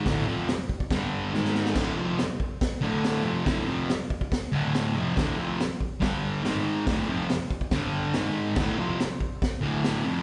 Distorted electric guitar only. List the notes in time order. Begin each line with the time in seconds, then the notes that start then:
0.06 D2 A2 D3
0.27 F2 C3 F3
0.91 G2 D3 G3
1.33 G#2 D#3 G#3
1.75 D2 A2 D3
1.95 F2 C3 F3
2.82 D2 A2 D3
3.24 F2 C3 F3
3.46 D2 A2 D3
3.67 F2 C3 F3
4.52 D2 A2 D3
4.96 F2 C3 F3
5.16 D2 A2 D3
5.37 F2 C3 F3
6.01 G2 D3 G3
6.43 G#2 D#3 G#3
6.87 D2 A2 D3
7.07 F2 C3 F3
7.72 G2 D3 G3
8.15 G#2 D#3 G#3
8.58 D2 A2 D3
8.78 F2 C3 F3
9.61 D2 A2 D3
10.05 F2 C3 F3